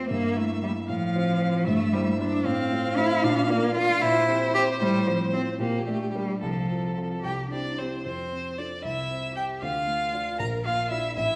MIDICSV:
0, 0, Header, 1, 4, 480
1, 0, Start_track
1, 0, Key_signature, -1, "major"
1, 0, Tempo, 522193
1, 100, Time_signature, 6, 3, 24, 8
1, 4902, Tempo, 542005
1, 7782, Tempo, 517241
1, 10353, End_track
2, 0, Start_track
2, 0, Title_t, "Violin"
2, 0, Program_c, 0, 40
2, 98, Note_on_c, 0, 76, 57
2, 782, Note_off_c, 0, 76, 0
2, 818, Note_on_c, 0, 77, 62
2, 1500, Note_off_c, 0, 77, 0
2, 1539, Note_on_c, 0, 76, 65
2, 2218, Note_off_c, 0, 76, 0
2, 2250, Note_on_c, 0, 77, 83
2, 3656, Note_off_c, 0, 77, 0
2, 3701, Note_on_c, 0, 72, 84
2, 5104, Note_off_c, 0, 72, 0
2, 5139, Note_on_c, 0, 67, 69
2, 5831, Note_off_c, 0, 67, 0
2, 5869, Note_on_c, 0, 69, 52
2, 6556, Note_off_c, 0, 69, 0
2, 6592, Note_on_c, 0, 79, 67
2, 6663, Note_off_c, 0, 79, 0
2, 6836, Note_on_c, 0, 74, 60
2, 7074, Note_on_c, 0, 72, 50
2, 7087, Note_off_c, 0, 74, 0
2, 7312, Note_off_c, 0, 72, 0
2, 7318, Note_on_c, 0, 72, 60
2, 7780, Note_on_c, 0, 74, 53
2, 7794, Note_off_c, 0, 72, 0
2, 8016, Note_off_c, 0, 74, 0
2, 8022, Note_on_c, 0, 76, 66
2, 8495, Note_off_c, 0, 76, 0
2, 8504, Note_on_c, 0, 79, 59
2, 8578, Note_off_c, 0, 79, 0
2, 8743, Note_on_c, 0, 77, 72
2, 9444, Note_off_c, 0, 77, 0
2, 9457, Note_on_c, 0, 82, 76
2, 9531, Note_off_c, 0, 82, 0
2, 9695, Note_on_c, 0, 77, 74
2, 9926, Note_off_c, 0, 77, 0
2, 9932, Note_on_c, 0, 76, 72
2, 10171, Note_off_c, 0, 76, 0
2, 10176, Note_on_c, 0, 76, 89
2, 10353, Note_off_c, 0, 76, 0
2, 10353, End_track
3, 0, Start_track
3, 0, Title_t, "Grand piano"
3, 0, Program_c, 1, 0
3, 0, Control_c, 1, 64, 127
3, 0, Note_on_c, 1, 41, 58
3, 0, Note_on_c, 1, 60, 44
3, 0, Note_on_c, 1, 65, 47
3, 0, Note_on_c, 1, 72, 51
3, 97, Note_on_c, 1, 43, 65
3, 119, Control_c, 1, 64, 0
3, 120, Note_off_c, 1, 60, 0
3, 123, Note_off_c, 1, 41, 0
3, 123, Note_off_c, 1, 65, 0
3, 124, Note_off_c, 1, 72, 0
3, 254, Control_c, 1, 64, 127
3, 329, Note_off_c, 1, 43, 0
3, 334, Note_on_c, 1, 58, 49
3, 338, Note_on_c, 1, 64, 47
3, 341, Note_on_c, 1, 76, 55
3, 552, Note_off_c, 1, 58, 0
3, 554, Note_off_c, 1, 64, 0
3, 556, Note_off_c, 1, 76, 0
3, 575, Note_on_c, 1, 58, 47
3, 581, Note_on_c, 1, 64, 47
3, 584, Note_on_c, 1, 76, 54
3, 794, Note_off_c, 1, 58, 0
3, 796, Note_off_c, 1, 64, 0
3, 799, Note_off_c, 1, 76, 0
3, 819, Note_on_c, 1, 45, 69
3, 836, Control_c, 1, 64, 0
3, 1014, Control_c, 1, 64, 127
3, 1052, Note_off_c, 1, 45, 0
3, 1060, Note_on_c, 1, 65, 52
3, 1061, Note_on_c, 1, 60, 51
3, 1064, Note_on_c, 1, 72, 57
3, 1275, Note_off_c, 1, 65, 0
3, 1276, Note_off_c, 1, 60, 0
3, 1277, Note_off_c, 1, 72, 0
3, 1299, Note_on_c, 1, 60, 55
3, 1303, Note_on_c, 1, 65, 54
3, 1306, Note_on_c, 1, 72, 57
3, 1514, Note_off_c, 1, 60, 0
3, 1516, Note_off_c, 1, 65, 0
3, 1518, Note_off_c, 1, 72, 0
3, 1538, Note_on_c, 1, 43, 75
3, 1554, Control_c, 1, 64, 0
3, 1707, Control_c, 1, 64, 127
3, 1769, Note_off_c, 1, 43, 0
3, 1779, Note_on_c, 1, 58, 57
3, 1786, Note_on_c, 1, 64, 55
3, 1788, Note_on_c, 1, 72, 62
3, 1992, Note_off_c, 1, 58, 0
3, 1995, Note_off_c, 1, 64, 0
3, 1997, Note_off_c, 1, 72, 0
3, 2015, Note_on_c, 1, 58, 56
3, 2022, Note_on_c, 1, 64, 52
3, 2026, Note_on_c, 1, 72, 60
3, 2230, Note_off_c, 1, 58, 0
3, 2235, Note_off_c, 1, 64, 0
3, 2236, Note_off_c, 1, 72, 0
3, 2256, Note_on_c, 1, 45, 75
3, 2273, Control_c, 1, 64, 0
3, 2420, Control_c, 1, 64, 127
3, 2489, Note_off_c, 1, 45, 0
3, 2503, Note_on_c, 1, 57, 54
3, 2505, Note_on_c, 1, 65, 53
3, 2508, Note_on_c, 1, 72, 59
3, 2715, Note_off_c, 1, 57, 0
3, 2717, Note_off_c, 1, 65, 0
3, 2718, Note_off_c, 1, 72, 0
3, 2738, Note_on_c, 1, 57, 58
3, 2743, Note_on_c, 1, 65, 56
3, 2747, Note_on_c, 1, 72, 61
3, 2951, Note_off_c, 1, 57, 0
3, 2954, Note_off_c, 1, 65, 0
3, 2956, Note_off_c, 1, 72, 0
3, 2974, Note_on_c, 1, 46, 83
3, 2990, Control_c, 1, 64, 0
3, 3118, Control_c, 1, 64, 127
3, 3207, Note_off_c, 1, 46, 0
3, 3213, Note_on_c, 1, 62, 58
3, 3215, Note_on_c, 1, 65, 62
3, 3221, Note_on_c, 1, 70, 63
3, 3430, Note_off_c, 1, 62, 0
3, 3431, Note_off_c, 1, 65, 0
3, 3434, Note_off_c, 1, 70, 0
3, 3454, Note_on_c, 1, 62, 58
3, 3459, Note_on_c, 1, 65, 54
3, 3461, Note_on_c, 1, 70, 59
3, 3671, Note_off_c, 1, 62, 0
3, 3674, Note_off_c, 1, 65, 0
3, 3675, Note_off_c, 1, 70, 0
3, 3698, Note_on_c, 1, 46, 73
3, 3713, Control_c, 1, 64, 0
3, 3874, Control_c, 1, 64, 127
3, 3929, Note_off_c, 1, 46, 0
3, 3938, Note_on_c, 1, 60, 59
3, 3942, Note_on_c, 1, 67, 55
3, 3946, Note_on_c, 1, 72, 62
3, 4153, Note_off_c, 1, 60, 0
3, 4155, Note_off_c, 1, 67, 0
3, 4157, Note_off_c, 1, 72, 0
3, 4179, Note_on_c, 1, 60, 55
3, 4181, Note_on_c, 1, 67, 52
3, 4184, Note_on_c, 1, 72, 60
3, 4395, Note_off_c, 1, 60, 0
3, 4396, Note_off_c, 1, 67, 0
3, 4398, Note_off_c, 1, 72, 0
3, 4418, Note_on_c, 1, 45, 77
3, 4434, Control_c, 1, 64, 0
3, 4601, Control_c, 1, 64, 127
3, 4652, Note_off_c, 1, 45, 0
3, 4658, Note_on_c, 1, 60, 53
3, 4660, Note_on_c, 1, 65, 56
3, 4664, Note_on_c, 1, 72, 60
3, 4876, Note_off_c, 1, 60, 0
3, 4877, Note_off_c, 1, 65, 0
3, 4879, Note_off_c, 1, 72, 0
3, 4898, Note_on_c, 1, 60, 50
3, 4904, Note_on_c, 1, 65, 49
3, 4907, Note_on_c, 1, 72, 57
3, 5111, Note_off_c, 1, 60, 0
3, 5114, Note_off_c, 1, 65, 0
3, 5116, Note_off_c, 1, 72, 0
3, 5135, Note_on_c, 1, 46, 67
3, 5153, Control_c, 1, 64, 0
3, 5295, Control_c, 1, 64, 127
3, 5369, Note_off_c, 1, 46, 0
3, 5380, Note_on_c, 1, 62, 49
3, 5383, Note_on_c, 1, 67, 45
3, 5385, Note_on_c, 1, 70, 49
3, 5598, Note_off_c, 1, 62, 0
3, 5599, Note_off_c, 1, 67, 0
3, 5601, Note_off_c, 1, 70, 0
3, 5624, Note_on_c, 1, 62, 46
3, 5627, Note_on_c, 1, 67, 47
3, 5629, Note_on_c, 1, 70, 48
3, 5842, Note_off_c, 1, 62, 0
3, 5844, Note_off_c, 1, 67, 0
3, 5845, Note_off_c, 1, 70, 0
3, 5872, Note_on_c, 1, 36, 61
3, 5884, Control_c, 1, 64, 0
3, 6057, Control_c, 1, 64, 127
3, 6105, Note_off_c, 1, 36, 0
3, 6111, Note_on_c, 1, 60, 42
3, 6118, Note_on_c, 1, 65, 43
3, 6120, Note_on_c, 1, 69, 45
3, 6327, Note_off_c, 1, 60, 0
3, 6331, Note_off_c, 1, 65, 0
3, 6332, Note_off_c, 1, 69, 0
3, 6354, Note_on_c, 1, 60, 42
3, 6359, Note_on_c, 1, 65, 39
3, 6361, Note_on_c, 1, 69, 43
3, 6568, Note_off_c, 1, 60, 0
3, 6571, Note_off_c, 1, 65, 0
3, 6572, Note_off_c, 1, 69, 0
3, 6597, Note_on_c, 1, 36, 57
3, 6606, Control_c, 1, 64, 0
3, 6768, Control_c, 1, 64, 127
3, 6827, Note_off_c, 1, 36, 0
3, 6834, Note_on_c, 1, 60, 42
3, 6838, Note_on_c, 1, 64, 39
3, 6840, Note_on_c, 1, 67, 43
3, 7050, Note_off_c, 1, 60, 0
3, 7053, Note_off_c, 1, 64, 0
3, 7054, Note_off_c, 1, 67, 0
3, 7076, Note_on_c, 1, 60, 41
3, 7080, Note_on_c, 1, 64, 39
3, 7085, Note_on_c, 1, 67, 43
3, 7289, Note_off_c, 1, 60, 0
3, 7292, Note_off_c, 1, 64, 0
3, 7295, Note_off_c, 1, 67, 0
3, 7314, Note_on_c, 1, 41, 50
3, 7328, Control_c, 1, 64, 0
3, 7469, Control_c, 1, 64, 127
3, 7551, Note_on_c, 1, 60, 38
3, 7783, Note_on_c, 1, 65, 32
3, 7786, Note_on_c, 1, 69, 38
3, 7929, Note_off_c, 1, 60, 0
3, 8000, Note_off_c, 1, 65, 0
3, 8002, Note_off_c, 1, 41, 0
3, 8002, Note_off_c, 1, 69, 0
3, 8023, Note_on_c, 1, 36, 49
3, 8042, Control_c, 1, 64, 0
3, 8192, Control_c, 1, 64, 127
3, 8267, Note_on_c, 1, 60, 35
3, 8505, Note_on_c, 1, 67, 37
3, 8650, Note_off_c, 1, 60, 0
3, 8720, Note_off_c, 1, 67, 0
3, 8722, Note_off_c, 1, 36, 0
3, 8747, Note_on_c, 1, 38, 52
3, 8760, Control_c, 1, 64, 0
3, 8891, Control_c, 1, 64, 127
3, 8978, Note_on_c, 1, 57, 42
3, 9222, Note_on_c, 1, 62, 38
3, 9226, Note_on_c, 1, 65, 43
3, 9361, Note_off_c, 1, 57, 0
3, 9435, Note_off_c, 1, 62, 0
3, 9438, Note_off_c, 1, 38, 0
3, 9438, Note_off_c, 1, 65, 0
3, 9462, Note_on_c, 1, 34, 54
3, 9476, Control_c, 1, 64, 0
3, 9631, Control_c, 1, 64, 127
3, 9702, Note_on_c, 1, 58, 45
3, 9938, Note_on_c, 1, 62, 43
3, 9939, Note_on_c, 1, 65, 48
3, 10084, Note_off_c, 1, 58, 0
3, 10155, Note_off_c, 1, 62, 0
3, 10155, Note_off_c, 1, 65, 0
3, 10159, Note_off_c, 1, 34, 0
3, 10180, Note_on_c, 1, 33, 64
3, 10196, Control_c, 1, 64, 0
3, 10343, Control_c, 1, 64, 127
3, 10353, Note_off_c, 1, 33, 0
3, 10353, End_track
4, 0, Start_track
4, 0, Title_t, "Cello"
4, 0, Program_c, 2, 42
4, 95, Note_on_c, 2, 58, 92
4, 337, Note_on_c, 2, 57, 80
4, 351, Note_off_c, 2, 58, 0
4, 572, Note_off_c, 2, 57, 0
4, 577, Note_on_c, 2, 55, 76
4, 651, Note_off_c, 2, 55, 0
4, 809, Note_on_c, 2, 53, 99
4, 1530, Note_on_c, 2, 57, 108
4, 1543, Note_off_c, 2, 53, 0
4, 1773, Note_on_c, 2, 55, 86
4, 1787, Note_off_c, 2, 57, 0
4, 2013, Note_off_c, 2, 55, 0
4, 2019, Note_on_c, 2, 62, 96
4, 2259, Note_on_c, 2, 60, 96
4, 2273, Note_off_c, 2, 62, 0
4, 2735, Note_on_c, 2, 64, 108
4, 2748, Note_off_c, 2, 60, 0
4, 2977, Note_on_c, 2, 62, 94
4, 2991, Note_off_c, 2, 64, 0
4, 3217, Note_on_c, 2, 58, 102
4, 3230, Note_off_c, 2, 62, 0
4, 3450, Note_off_c, 2, 58, 0
4, 3455, Note_on_c, 2, 65, 111
4, 3689, Note_on_c, 2, 64, 117
4, 3703, Note_off_c, 2, 65, 0
4, 4172, Note_off_c, 2, 64, 0
4, 4176, Note_on_c, 2, 67, 106
4, 4249, Note_off_c, 2, 67, 0
4, 4417, Note_on_c, 2, 55, 112
4, 4664, Note_on_c, 2, 53, 86
4, 4678, Note_off_c, 2, 55, 0
4, 4894, Note_off_c, 2, 53, 0
4, 4899, Note_on_c, 2, 60, 84
4, 4970, Note_off_c, 2, 60, 0
4, 5137, Note_on_c, 2, 58, 88
4, 5369, Note_off_c, 2, 58, 0
4, 5374, Note_on_c, 2, 57, 78
4, 5614, Note_off_c, 2, 57, 0
4, 5625, Note_on_c, 2, 55, 78
4, 5862, Note_off_c, 2, 55, 0
4, 5871, Note_on_c, 2, 53, 72
4, 6578, Note_off_c, 2, 53, 0
4, 6582, Note_on_c, 2, 67, 56
4, 6809, Note_off_c, 2, 67, 0
4, 6828, Note_on_c, 2, 62, 52
4, 7067, Note_off_c, 2, 62, 0
4, 7074, Note_on_c, 2, 60, 42
4, 7145, Note_off_c, 2, 60, 0
4, 7307, Note_on_c, 2, 60, 53
4, 7769, Note_off_c, 2, 60, 0
4, 7778, Note_on_c, 2, 62, 47
4, 7852, Note_off_c, 2, 62, 0
4, 8016, Note_on_c, 2, 64, 60
4, 8492, Note_off_c, 2, 64, 0
4, 8504, Note_on_c, 2, 67, 55
4, 8743, Note_on_c, 2, 65, 66
4, 8757, Note_off_c, 2, 67, 0
4, 9455, Note_off_c, 2, 65, 0
4, 9460, Note_on_c, 2, 70, 68
4, 9707, Note_on_c, 2, 65, 64
4, 9720, Note_off_c, 2, 70, 0
4, 9943, Note_on_c, 2, 64, 65
4, 9957, Note_off_c, 2, 65, 0
4, 10178, Note_off_c, 2, 64, 0
4, 10184, Note_on_c, 2, 64, 84
4, 10353, Note_off_c, 2, 64, 0
4, 10353, End_track
0, 0, End_of_file